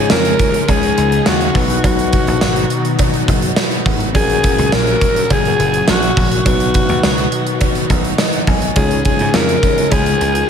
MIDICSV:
0, 0, Header, 1, 7, 480
1, 0, Start_track
1, 0, Tempo, 576923
1, 1531, Time_signature, 4, 2, 24, 8
1, 8732, End_track
2, 0, Start_track
2, 0, Title_t, "Alto saxophone"
2, 0, Program_c, 0, 65
2, 95, Note_on_c, 0, 70, 111
2, 579, Note_on_c, 0, 68, 103
2, 592, Note_off_c, 0, 70, 0
2, 1055, Note_off_c, 0, 68, 0
2, 1067, Note_on_c, 0, 66, 92
2, 1506, Note_off_c, 0, 66, 0
2, 1539, Note_on_c, 0, 66, 93
2, 2462, Note_off_c, 0, 66, 0
2, 3455, Note_on_c, 0, 68, 108
2, 3942, Note_on_c, 0, 70, 113
2, 3954, Note_off_c, 0, 68, 0
2, 4428, Note_on_c, 0, 68, 104
2, 4440, Note_off_c, 0, 70, 0
2, 4899, Note_off_c, 0, 68, 0
2, 4909, Note_on_c, 0, 66, 94
2, 5347, Note_off_c, 0, 66, 0
2, 5383, Note_on_c, 0, 66, 91
2, 6303, Note_off_c, 0, 66, 0
2, 7296, Note_on_c, 0, 68, 105
2, 7517, Note_off_c, 0, 68, 0
2, 7531, Note_on_c, 0, 68, 104
2, 7771, Note_on_c, 0, 70, 120
2, 7783, Note_off_c, 0, 68, 0
2, 8247, Note_on_c, 0, 68, 105
2, 8259, Note_off_c, 0, 70, 0
2, 8732, Note_off_c, 0, 68, 0
2, 8732, End_track
3, 0, Start_track
3, 0, Title_t, "Tine electric piano"
3, 0, Program_c, 1, 4
3, 0, Control_c, 1, 64, 127
3, 0, Note_on_c, 1, 49, 65
3, 0, Note_on_c, 1, 56, 67
3, 0, Note_on_c, 1, 61, 59
3, 0, Note_on_c, 1, 63, 59
3, 0, Note_on_c, 1, 65, 61
3, 0, Note_on_c, 1, 73, 70
3, 296, Note_off_c, 1, 49, 0
3, 1252, Note_off_c, 1, 56, 0
3, 1254, Note_off_c, 1, 61, 0
3, 1257, Note_off_c, 1, 63, 0
3, 1258, Note_off_c, 1, 65, 0
3, 1262, Note_off_c, 1, 73, 0
3, 1281, Note_on_c, 1, 63, 70
3, 1291, Note_on_c, 1, 47, 67
3, 1292, Note_on_c, 1, 66, 65
3, 1300, Note_on_c, 1, 71, 76
3, 1301, Control_c, 1, 64, 0
3, 1435, Control_c, 1, 64, 127
3, 1978, Note_off_c, 1, 47, 0
3, 3172, Note_off_c, 1, 63, 0
3, 3178, Note_off_c, 1, 66, 0
3, 3182, Note_off_c, 1, 71, 0
3, 3438, Note_on_c, 1, 61, 66
3, 3448, Note_on_c, 1, 66, 61
3, 3450, Note_on_c, 1, 46, 68
3, 3457, Note_on_c, 1, 70, 77
3, 3463, Control_c, 1, 64, 0
3, 3609, Control_c, 1, 64, 127
3, 4137, Note_off_c, 1, 46, 0
3, 5331, Note_off_c, 1, 61, 0
3, 5336, Note_off_c, 1, 66, 0
3, 5341, Note_off_c, 1, 70, 0
3, 5365, Note_on_c, 1, 63, 66
3, 5375, Note_on_c, 1, 66, 59
3, 5377, Note_on_c, 1, 47, 64
3, 5379, Control_c, 1, 64, 0
3, 5385, Note_on_c, 1, 71, 75
3, 5512, Control_c, 1, 64, 127
3, 6060, Note_off_c, 1, 47, 0
3, 6814, Note_on_c, 1, 75, 71
3, 7036, Note_off_c, 1, 75, 0
3, 7054, Note_on_c, 1, 80, 71
3, 7255, Note_off_c, 1, 63, 0
3, 7260, Note_off_c, 1, 66, 0
3, 7265, Note_off_c, 1, 71, 0
3, 7276, Note_off_c, 1, 80, 0
3, 7288, Note_on_c, 1, 56, 65
3, 7292, Note_on_c, 1, 61, 59
3, 7297, Note_on_c, 1, 49, 64
3, 7298, Note_on_c, 1, 63, 57
3, 7300, Control_c, 1, 64, 0
3, 7301, Note_on_c, 1, 65, 59
3, 7308, Note_on_c, 1, 73, 75
3, 7463, Control_c, 1, 64, 127
3, 7981, Note_off_c, 1, 49, 0
3, 8732, Note_off_c, 1, 56, 0
3, 8732, Note_off_c, 1, 61, 0
3, 8732, Note_off_c, 1, 63, 0
3, 8732, Note_off_c, 1, 65, 0
3, 8732, Note_off_c, 1, 73, 0
3, 8732, End_track
4, 0, Start_track
4, 0, Title_t, "Overdriven electric guitar"
4, 0, Program_c, 2, 29
4, 0, Note_on_c, 2, 49, 89
4, 0, Note_on_c, 2, 56, 87
4, 0, Note_on_c, 2, 61, 86
4, 554, Note_off_c, 2, 49, 0
4, 564, Note_on_c, 2, 49, 65
4, 567, Note_off_c, 2, 56, 0
4, 576, Note_on_c, 2, 56, 61
4, 579, Note_off_c, 2, 61, 0
4, 589, Note_on_c, 2, 61, 72
4, 1028, Note_off_c, 2, 49, 0
4, 1038, Note_on_c, 2, 49, 59
4, 1045, Note_off_c, 2, 56, 0
4, 1053, Note_off_c, 2, 61, 0
4, 1055, Note_on_c, 2, 56, 59
4, 1063, Note_on_c, 2, 61, 70
4, 1278, Note_off_c, 2, 61, 0
4, 1281, Note_on_c, 2, 59, 67
4, 1285, Note_off_c, 2, 49, 0
4, 1291, Note_off_c, 2, 56, 0
4, 1294, Note_on_c, 2, 54, 67
4, 1300, Note_on_c, 2, 47, 56
4, 1991, Note_off_c, 2, 47, 0
4, 2001, Note_on_c, 2, 47, 62
4, 2006, Note_off_c, 2, 59, 0
4, 2013, Note_off_c, 2, 54, 0
4, 2017, Note_on_c, 2, 54, 66
4, 2029, Note_on_c, 2, 59, 60
4, 2472, Note_off_c, 2, 47, 0
4, 2482, Note_on_c, 2, 47, 78
4, 2492, Note_off_c, 2, 54, 0
4, 2495, Note_on_c, 2, 54, 72
4, 2496, Note_off_c, 2, 59, 0
4, 2506, Note_on_c, 2, 59, 80
4, 2949, Note_off_c, 2, 47, 0
4, 2959, Note_on_c, 2, 47, 74
4, 2969, Note_off_c, 2, 54, 0
4, 2973, Note_on_c, 2, 54, 72
4, 2975, Note_off_c, 2, 59, 0
4, 2985, Note_on_c, 2, 59, 80
4, 3445, Note_off_c, 2, 47, 0
4, 3445, Note_on_c, 2, 42, 78
4, 3453, Note_on_c, 2, 49, 86
4, 3458, Note_off_c, 2, 59, 0
4, 3460, Note_off_c, 2, 54, 0
4, 3463, Note_on_c, 2, 54, 91
4, 3913, Note_off_c, 2, 42, 0
4, 3923, Note_on_c, 2, 42, 57
4, 3928, Note_off_c, 2, 49, 0
4, 3938, Note_on_c, 2, 49, 60
4, 3948, Note_off_c, 2, 54, 0
4, 3952, Note_on_c, 2, 54, 60
4, 4395, Note_off_c, 2, 42, 0
4, 4405, Note_on_c, 2, 42, 67
4, 4410, Note_off_c, 2, 49, 0
4, 4420, Note_on_c, 2, 49, 70
4, 4429, Note_off_c, 2, 54, 0
4, 4432, Note_on_c, 2, 54, 73
4, 4875, Note_off_c, 2, 42, 0
4, 4885, Note_on_c, 2, 42, 65
4, 4888, Note_off_c, 2, 49, 0
4, 4898, Note_on_c, 2, 49, 64
4, 4908, Note_off_c, 2, 54, 0
4, 4912, Note_on_c, 2, 54, 69
4, 5368, Note_off_c, 2, 42, 0
4, 5368, Note_off_c, 2, 49, 0
4, 5372, Note_on_c, 2, 47, 85
4, 5378, Note_off_c, 2, 54, 0
4, 5382, Note_on_c, 2, 54, 88
4, 5390, Note_on_c, 2, 59, 94
4, 5842, Note_off_c, 2, 47, 0
4, 5852, Note_on_c, 2, 47, 55
4, 5855, Note_off_c, 2, 54, 0
4, 5860, Note_off_c, 2, 59, 0
4, 5865, Note_on_c, 2, 54, 61
4, 5876, Note_on_c, 2, 59, 63
4, 6316, Note_off_c, 2, 47, 0
4, 6326, Note_on_c, 2, 47, 74
4, 6328, Note_off_c, 2, 54, 0
4, 6338, Note_on_c, 2, 54, 69
4, 6344, Note_off_c, 2, 59, 0
4, 6353, Note_on_c, 2, 59, 77
4, 6797, Note_off_c, 2, 47, 0
4, 6807, Note_on_c, 2, 47, 66
4, 6811, Note_off_c, 2, 54, 0
4, 6821, Note_on_c, 2, 54, 65
4, 6822, Note_off_c, 2, 59, 0
4, 6832, Note_on_c, 2, 59, 76
4, 7282, Note_off_c, 2, 47, 0
4, 7285, Note_on_c, 2, 49, 74
4, 7294, Note_off_c, 2, 54, 0
4, 7297, Note_on_c, 2, 56, 92
4, 7301, Note_off_c, 2, 59, 0
4, 7304, Note_on_c, 2, 61, 95
4, 7755, Note_off_c, 2, 49, 0
4, 7765, Note_on_c, 2, 49, 52
4, 7771, Note_off_c, 2, 56, 0
4, 7778, Note_off_c, 2, 61, 0
4, 7781, Note_on_c, 2, 56, 58
4, 7791, Note_on_c, 2, 61, 56
4, 8236, Note_off_c, 2, 49, 0
4, 8246, Note_on_c, 2, 49, 66
4, 8251, Note_off_c, 2, 56, 0
4, 8261, Note_off_c, 2, 61, 0
4, 8261, Note_on_c, 2, 56, 68
4, 8272, Note_on_c, 2, 61, 68
4, 8719, Note_off_c, 2, 49, 0
4, 8731, Note_off_c, 2, 56, 0
4, 8732, Note_off_c, 2, 61, 0
4, 8732, End_track
5, 0, Start_track
5, 0, Title_t, "String machine"
5, 0, Program_c, 3, 50
5, 0, Note_on_c, 3, 49, 75
5, 0, Note_on_c, 3, 53, 64
5, 0, Note_on_c, 3, 56, 65
5, 0, Note_on_c, 3, 63, 68
5, 0, Note_on_c, 3, 65, 84
5, 1269, Note_off_c, 3, 49, 0
5, 1270, Note_off_c, 3, 53, 0
5, 1270, Note_off_c, 3, 56, 0
5, 1270, Note_off_c, 3, 65, 0
5, 1286, Note_on_c, 3, 51, 75
5, 1288, Note_on_c, 3, 47, 81
5, 1288, Note_on_c, 3, 66, 88
5, 1290, Note_on_c, 3, 54, 75
5, 3415, Note_off_c, 3, 63, 0
5, 3427, Note_off_c, 3, 51, 0
5, 3428, Note_off_c, 3, 47, 0
5, 3429, Note_off_c, 3, 54, 0
5, 3450, Note_on_c, 3, 61, 68
5, 3453, Note_on_c, 3, 46, 75
5, 3453, Note_on_c, 3, 49, 68
5, 3453, Note_on_c, 3, 54, 67
5, 5351, Note_off_c, 3, 61, 0
5, 5353, Note_off_c, 3, 46, 0
5, 5353, Note_off_c, 3, 49, 0
5, 5371, Note_on_c, 3, 47, 79
5, 5375, Note_on_c, 3, 51, 70
5, 5376, Note_on_c, 3, 63, 69
5, 7256, Note_off_c, 3, 66, 0
5, 7259, Note_off_c, 3, 54, 0
5, 7272, Note_off_c, 3, 47, 0
5, 7274, Note_off_c, 3, 51, 0
5, 7274, Note_off_c, 3, 63, 0
5, 7286, Note_on_c, 3, 53, 67
5, 7287, Note_on_c, 3, 56, 66
5, 7288, Note_on_c, 3, 49, 76
5, 7289, Note_on_c, 3, 63, 69
5, 7289, Note_on_c, 3, 65, 81
5, 8732, Note_off_c, 3, 49, 0
5, 8732, Note_off_c, 3, 53, 0
5, 8732, Note_off_c, 3, 56, 0
5, 8732, Note_off_c, 3, 63, 0
5, 8732, Note_off_c, 3, 65, 0
5, 8732, End_track
6, 0, Start_track
6, 0, Title_t, "Slap bass"
6, 0, Program_c, 4, 36
6, 94, Note_on_c, 4, 41, 104
6, 273, Note_off_c, 4, 41, 0
6, 569, Note_on_c, 4, 37, 96
6, 750, Note_off_c, 4, 37, 0
6, 813, Note_on_c, 4, 37, 89
6, 992, Note_off_c, 4, 37, 0
6, 1053, Note_on_c, 4, 39, 92
6, 1232, Note_off_c, 4, 39, 0
6, 1291, Note_on_c, 4, 35, 99
6, 1471, Note_off_c, 4, 35, 0
6, 1531, Note_on_c, 4, 35, 104
6, 1801, Note_off_c, 4, 35, 0
6, 1894, Note_on_c, 4, 34, 96
6, 1983, Note_off_c, 4, 34, 0
6, 2017, Note_on_c, 4, 32, 100
6, 2195, Note_off_c, 4, 32, 0
6, 2733, Note_on_c, 4, 30, 92
6, 2912, Note_off_c, 4, 30, 0
6, 3210, Note_on_c, 4, 32, 92
6, 3452, Note_off_c, 4, 32, 0
6, 3452, Note_on_c, 4, 34, 110
6, 3722, Note_off_c, 4, 34, 0
6, 3815, Note_on_c, 4, 37, 92
6, 3904, Note_off_c, 4, 37, 0
6, 3935, Note_on_c, 4, 34, 99
6, 4113, Note_off_c, 4, 34, 0
6, 4414, Note_on_c, 4, 30, 92
6, 4593, Note_off_c, 4, 30, 0
6, 4653, Note_on_c, 4, 30, 92
6, 4832, Note_off_c, 4, 30, 0
6, 4894, Note_on_c, 4, 34, 99
6, 5073, Note_off_c, 4, 34, 0
6, 5135, Note_on_c, 4, 34, 86
6, 5313, Note_off_c, 4, 34, 0
6, 5373, Note_on_c, 4, 35, 113
6, 5642, Note_off_c, 4, 35, 0
6, 5733, Note_on_c, 4, 39, 86
6, 5822, Note_off_c, 4, 39, 0
6, 5856, Note_on_c, 4, 37, 93
6, 6034, Note_off_c, 4, 37, 0
6, 6572, Note_on_c, 4, 35, 85
6, 6751, Note_off_c, 4, 35, 0
6, 7049, Note_on_c, 4, 35, 90
6, 7230, Note_off_c, 4, 35, 0
6, 7291, Note_on_c, 4, 37, 116
6, 7561, Note_off_c, 4, 37, 0
6, 7656, Note_on_c, 4, 44, 98
6, 7744, Note_off_c, 4, 44, 0
6, 7773, Note_on_c, 4, 41, 104
6, 7952, Note_off_c, 4, 41, 0
6, 8251, Note_on_c, 4, 37, 97
6, 8431, Note_off_c, 4, 37, 0
6, 8492, Note_on_c, 4, 37, 93
6, 8671, Note_off_c, 4, 37, 0
6, 8732, End_track
7, 0, Start_track
7, 0, Title_t, "Drums"
7, 82, Note_on_c, 9, 38, 114
7, 84, Note_on_c, 9, 54, 73
7, 90, Note_on_c, 9, 56, 70
7, 165, Note_off_c, 9, 38, 0
7, 167, Note_off_c, 9, 54, 0
7, 174, Note_off_c, 9, 56, 0
7, 208, Note_on_c, 9, 42, 57
7, 292, Note_off_c, 9, 42, 0
7, 327, Note_on_c, 9, 42, 76
7, 329, Note_on_c, 9, 36, 89
7, 410, Note_off_c, 9, 42, 0
7, 412, Note_off_c, 9, 36, 0
7, 450, Note_on_c, 9, 42, 59
7, 533, Note_off_c, 9, 42, 0
7, 569, Note_on_c, 9, 42, 78
7, 570, Note_on_c, 9, 36, 89
7, 571, Note_on_c, 9, 56, 67
7, 652, Note_off_c, 9, 42, 0
7, 653, Note_off_c, 9, 36, 0
7, 654, Note_off_c, 9, 56, 0
7, 689, Note_on_c, 9, 42, 48
7, 773, Note_off_c, 9, 42, 0
7, 812, Note_on_c, 9, 42, 85
7, 895, Note_off_c, 9, 42, 0
7, 932, Note_on_c, 9, 42, 53
7, 1015, Note_off_c, 9, 42, 0
7, 1048, Note_on_c, 9, 38, 114
7, 1048, Note_on_c, 9, 56, 72
7, 1049, Note_on_c, 9, 54, 72
7, 1131, Note_off_c, 9, 38, 0
7, 1131, Note_off_c, 9, 56, 0
7, 1132, Note_off_c, 9, 54, 0
7, 1170, Note_on_c, 9, 42, 49
7, 1253, Note_off_c, 9, 42, 0
7, 1290, Note_on_c, 9, 36, 97
7, 1293, Note_on_c, 9, 46, 77
7, 1373, Note_off_c, 9, 36, 0
7, 1376, Note_off_c, 9, 46, 0
7, 1413, Note_on_c, 9, 42, 60
7, 1496, Note_off_c, 9, 42, 0
7, 1531, Note_on_c, 9, 56, 72
7, 1532, Note_on_c, 9, 36, 108
7, 1533, Note_on_c, 9, 42, 103
7, 1614, Note_off_c, 9, 56, 0
7, 1615, Note_off_c, 9, 36, 0
7, 1616, Note_off_c, 9, 42, 0
7, 1655, Note_on_c, 9, 42, 50
7, 1738, Note_off_c, 9, 42, 0
7, 1769, Note_on_c, 9, 42, 80
7, 1774, Note_on_c, 9, 36, 98
7, 1853, Note_off_c, 9, 42, 0
7, 1857, Note_off_c, 9, 36, 0
7, 1892, Note_on_c, 9, 42, 52
7, 1975, Note_off_c, 9, 42, 0
7, 2008, Note_on_c, 9, 38, 115
7, 2010, Note_on_c, 9, 54, 75
7, 2012, Note_on_c, 9, 56, 67
7, 2091, Note_off_c, 9, 38, 0
7, 2093, Note_off_c, 9, 54, 0
7, 2095, Note_off_c, 9, 56, 0
7, 2131, Note_on_c, 9, 42, 53
7, 2214, Note_off_c, 9, 42, 0
7, 2248, Note_on_c, 9, 42, 75
7, 2331, Note_off_c, 9, 42, 0
7, 2370, Note_on_c, 9, 42, 56
7, 2453, Note_off_c, 9, 42, 0
7, 2485, Note_on_c, 9, 42, 83
7, 2490, Note_on_c, 9, 36, 89
7, 2492, Note_on_c, 9, 56, 71
7, 2568, Note_off_c, 9, 42, 0
7, 2573, Note_off_c, 9, 36, 0
7, 2575, Note_off_c, 9, 56, 0
7, 2610, Note_on_c, 9, 42, 50
7, 2693, Note_off_c, 9, 42, 0
7, 2731, Note_on_c, 9, 36, 88
7, 2732, Note_on_c, 9, 42, 86
7, 2814, Note_off_c, 9, 36, 0
7, 2815, Note_off_c, 9, 42, 0
7, 2849, Note_on_c, 9, 42, 57
7, 2932, Note_off_c, 9, 42, 0
7, 2966, Note_on_c, 9, 38, 107
7, 2967, Note_on_c, 9, 54, 73
7, 2968, Note_on_c, 9, 56, 73
7, 3049, Note_off_c, 9, 38, 0
7, 3050, Note_off_c, 9, 54, 0
7, 3052, Note_off_c, 9, 56, 0
7, 3090, Note_on_c, 9, 42, 50
7, 3173, Note_off_c, 9, 42, 0
7, 3210, Note_on_c, 9, 36, 102
7, 3211, Note_on_c, 9, 46, 77
7, 3293, Note_off_c, 9, 36, 0
7, 3294, Note_off_c, 9, 46, 0
7, 3332, Note_on_c, 9, 42, 54
7, 3415, Note_off_c, 9, 42, 0
7, 3449, Note_on_c, 9, 56, 71
7, 3452, Note_on_c, 9, 36, 108
7, 3453, Note_on_c, 9, 42, 101
7, 3533, Note_off_c, 9, 56, 0
7, 3535, Note_off_c, 9, 36, 0
7, 3536, Note_off_c, 9, 42, 0
7, 3574, Note_on_c, 9, 42, 51
7, 3657, Note_off_c, 9, 42, 0
7, 3692, Note_on_c, 9, 42, 81
7, 3695, Note_on_c, 9, 36, 98
7, 3775, Note_off_c, 9, 42, 0
7, 3778, Note_off_c, 9, 36, 0
7, 3814, Note_on_c, 9, 42, 50
7, 3897, Note_off_c, 9, 42, 0
7, 3930, Note_on_c, 9, 38, 115
7, 3931, Note_on_c, 9, 56, 68
7, 3933, Note_on_c, 9, 54, 70
7, 4014, Note_off_c, 9, 38, 0
7, 4014, Note_off_c, 9, 56, 0
7, 4016, Note_off_c, 9, 54, 0
7, 4054, Note_on_c, 9, 42, 56
7, 4137, Note_off_c, 9, 42, 0
7, 4172, Note_on_c, 9, 36, 94
7, 4174, Note_on_c, 9, 42, 76
7, 4256, Note_off_c, 9, 36, 0
7, 4258, Note_off_c, 9, 42, 0
7, 4296, Note_on_c, 9, 42, 58
7, 4379, Note_off_c, 9, 42, 0
7, 4412, Note_on_c, 9, 42, 84
7, 4413, Note_on_c, 9, 56, 75
7, 4414, Note_on_c, 9, 36, 94
7, 4495, Note_off_c, 9, 42, 0
7, 4496, Note_off_c, 9, 56, 0
7, 4497, Note_off_c, 9, 36, 0
7, 4536, Note_on_c, 9, 42, 50
7, 4619, Note_off_c, 9, 42, 0
7, 4657, Note_on_c, 9, 42, 83
7, 4741, Note_off_c, 9, 42, 0
7, 4774, Note_on_c, 9, 42, 59
7, 4857, Note_off_c, 9, 42, 0
7, 4889, Note_on_c, 9, 38, 112
7, 4890, Note_on_c, 9, 54, 74
7, 4890, Note_on_c, 9, 56, 71
7, 4972, Note_off_c, 9, 38, 0
7, 4973, Note_off_c, 9, 54, 0
7, 4973, Note_off_c, 9, 56, 0
7, 5014, Note_on_c, 9, 42, 54
7, 5097, Note_off_c, 9, 42, 0
7, 5133, Note_on_c, 9, 36, 98
7, 5133, Note_on_c, 9, 46, 77
7, 5216, Note_off_c, 9, 36, 0
7, 5216, Note_off_c, 9, 46, 0
7, 5254, Note_on_c, 9, 42, 57
7, 5338, Note_off_c, 9, 42, 0
7, 5371, Note_on_c, 9, 56, 71
7, 5373, Note_on_c, 9, 42, 99
7, 5374, Note_on_c, 9, 36, 106
7, 5454, Note_off_c, 9, 56, 0
7, 5456, Note_off_c, 9, 42, 0
7, 5457, Note_off_c, 9, 36, 0
7, 5493, Note_on_c, 9, 42, 54
7, 5576, Note_off_c, 9, 42, 0
7, 5610, Note_on_c, 9, 42, 83
7, 5616, Note_on_c, 9, 36, 100
7, 5693, Note_off_c, 9, 42, 0
7, 5699, Note_off_c, 9, 36, 0
7, 5732, Note_on_c, 9, 42, 50
7, 5815, Note_off_c, 9, 42, 0
7, 5852, Note_on_c, 9, 38, 111
7, 5853, Note_on_c, 9, 56, 68
7, 5854, Note_on_c, 9, 54, 73
7, 5936, Note_off_c, 9, 38, 0
7, 5936, Note_off_c, 9, 56, 0
7, 5938, Note_off_c, 9, 54, 0
7, 5972, Note_on_c, 9, 42, 55
7, 6055, Note_off_c, 9, 42, 0
7, 6090, Note_on_c, 9, 42, 82
7, 6173, Note_off_c, 9, 42, 0
7, 6211, Note_on_c, 9, 42, 57
7, 6294, Note_off_c, 9, 42, 0
7, 6328, Note_on_c, 9, 42, 81
7, 6331, Note_on_c, 9, 56, 67
7, 6333, Note_on_c, 9, 36, 92
7, 6411, Note_off_c, 9, 42, 0
7, 6414, Note_off_c, 9, 56, 0
7, 6416, Note_off_c, 9, 36, 0
7, 6450, Note_on_c, 9, 42, 50
7, 6533, Note_off_c, 9, 42, 0
7, 6572, Note_on_c, 9, 42, 82
7, 6573, Note_on_c, 9, 36, 92
7, 6655, Note_off_c, 9, 42, 0
7, 6656, Note_off_c, 9, 36, 0
7, 6694, Note_on_c, 9, 42, 54
7, 6777, Note_off_c, 9, 42, 0
7, 6809, Note_on_c, 9, 38, 112
7, 6810, Note_on_c, 9, 54, 73
7, 6811, Note_on_c, 9, 56, 73
7, 6892, Note_off_c, 9, 38, 0
7, 6893, Note_off_c, 9, 54, 0
7, 6894, Note_off_c, 9, 56, 0
7, 6929, Note_on_c, 9, 42, 50
7, 7012, Note_off_c, 9, 42, 0
7, 7050, Note_on_c, 9, 36, 96
7, 7050, Note_on_c, 9, 46, 76
7, 7133, Note_off_c, 9, 36, 0
7, 7133, Note_off_c, 9, 46, 0
7, 7170, Note_on_c, 9, 42, 58
7, 7253, Note_off_c, 9, 42, 0
7, 7287, Note_on_c, 9, 42, 101
7, 7290, Note_on_c, 9, 36, 111
7, 7291, Note_on_c, 9, 56, 72
7, 7370, Note_off_c, 9, 42, 0
7, 7374, Note_off_c, 9, 36, 0
7, 7374, Note_off_c, 9, 56, 0
7, 7411, Note_on_c, 9, 42, 52
7, 7494, Note_off_c, 9, 42, 0
7, 7529, Note_on_c, 9, 42, 80
7, 7533, Note_on_c, 9, 36, 99
7, 7612, Note_off_c, 9, 42, 0
7, 7617, Note_off_c, 9, 36, 0
7, 7648, Note_on_c, 9, 42, 53
7, 7731, Note_off_c, 9, 42, 0
7, 7769, Note_on_c, 9, 38, 114
7, 7770, Note_on_c, 9, 56, 69
7, 7771, Note_on_c, 9, 54, 72
7, 7853, Note_off_c, 9, 38, 0
7, 7853, Note_off_c, 9, 56, 0
7, 7855, Note_off_c, 9, 54, 0
7, 7895, Note_on_c, 9, 42, 54
7, 7978, Note_off_c, 9, 42, 0
7, 8012, Note_on_c, 9, 36, 89
7, 8016, Note_on_c, 9, 42, 75
7, 8095, Note_off_c, 9, 36, 0
7, 8099, Note_off_c, 9, 42, 0
7, 8135, Note_on_c, 9, 42, 59
7, 8219, Note_off_c, 9, 42, 0
7, 8249, Note_on_c, 9, 42, 82
7, 8250, Note_on_c, 9, 56, 72
7, 8251, Note_on_c, 9, 36, 94
7, 8332, Note_off_c, 9, 42, 0
7, 8333, Note_off_c, 9, 56, 0
7, 8334, Note_off_c, 9, 36, 0
7, 8372, Note_on_c, 9, 42, 51
7, 8455, Note_off_c, 9, 42, 0
7, 8496, Note_on_c, 9, 42, 88
7, 8579, Note_off_c, 9, 42, 0
7, 8612, Note_on_c, 9, 42, 55
7, 8695, Note_off_c, 9, 42, 0
7, 8732, End_track
0, 0, End_of_file